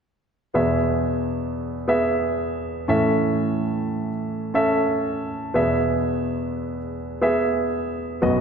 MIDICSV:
0, 0, Header, 1, 2, 480
1, 0, Start_track
1, 0, Key_signature, 4, "major"
1, 0, Tempo, 668003
1, 390, Time_signature, 4, 2, 24, 8
1, 6040, End_track
2, 0, Start_track
2, 0, Title_t, "Grand piano"
2, 0, Program_c, 0, 0
2, 390, Note_on_c, 0, 59, 59
2, 393, Note_on_c, 0, 40, 54
2, 393, Note_on_c, 0, 47, 57
2, 393, Note_on_c, 0, 68, 58
2, 396, Note_on_c, 0, 76, 65
2, 541, Control_c, 0, 64, 127
2, 1262, Note_off_c, 0, 59, 0
2, 1264, Note_off_c, 0, 68, 0
2, 1265, Note_off_c, 0, 76, 0
2, 1349, Note_on_c, 0, 59, 59
2, 1352, Note_on_c, 0, 68, 57
2, 1357, Note_on_c, 0, 76, 70
2, 2043, Note_off_c, 0, 40, 0
2, 2043, Note_off_c, 0, 47, 0
2, 2068, Note_off_c, 0, 76, 0
2, 2070, Note_off_c, 0, 59, 0
2, 2070, Note_on_c, 0, 61, 63
2, 2071, Note_off_c, 0, 68, 0
2, 2074, Note_on_c, 0, 45, 53
2, 2074, Note_on_c, 0, 52, 53
2, 2074, Note_on_c, 0, 69, 58
2, 2078, Control_c, 0, 64, 0
2, 2078, Note_on_c, 0, 76, 72
2, 2201, Control_c, 0, 64, 127
2, 2943, Note_off_c, 0, 61, 0
2, 2944, Note_off_c, 0, 69, 0
2, 2947, Note_off_c, 0, 76, 0
2, 3262, Note_on_c, 0, 61, 60
2, 3267, Note_on_c, 0, 69, 61
2, 3270, Note_on_c, 0, 76, 73
2, 3964, Note_off_c, 0, 45, 0
2, 3964, Note_off_c, 0, 52, 0
2, 3981, Note_off_c, 0, 76, 0
2, 3982, Note_on_c, 0, 59, 61
2, 3986, Note_on_c, 0, 40, 50
2, 3986, Note_on_c, 0, 47, 55
2, 3987, Note_off_c, 0, 61, 0
2, 3987, Note_on_c, 0, 68, 57
2, 3989, Note_off_c, 0, 69, 0
2, 3992, Note_on_c, 0, 76, 68
2, 4000, Control_c, 0, 64, 0
2, 4106, Control_c, 0, 64, 127
2, 4859, Note_off_c, 0, 59, 0
2, 4861, Note_off_c, 0, 68, 0
2, 4864, Note_off_c, 0, 76, 0
2, 5184, Note_on_c, 0, 59, 66
2, 5188, Note_on_c, 0, 68, 62
2, 5192, Note_on_c, 0, 76, 72
2, 5880, Note_off_c, 0, 40, 0
2, 5880, Note_off_c, 0, 47, 0
2, 5895, Note_off_c, 0, 59, 0
2, 5905, Note_on_c, 0, 59, 65
2, 5908, Note_on_c, 0, 66, 62
2, 5909, Note_on_c, 0, 42, 59
2, 5910, Note_off_c, 0, 68, 0
2, 5910, Note_on_c, 0, 35, 55
2, 5912, Note_off_c, 0, 76, 0
2, 5913, Note_on_c, 0, 75, 74
2, 5920, Control_c, 0, 64, 0
2, 6040, Note_off_c, 0, 35, 0
2, 6040, Note_off_c, 0, 42, 0
2, 6040, Note_off_c, 0, 59, 0
2, 6040, Note_off_c, 0, 66, 0
2, 6040, Note_off_c, 0, 75, 0
2, 6040, End_track
0, 0, End_of_file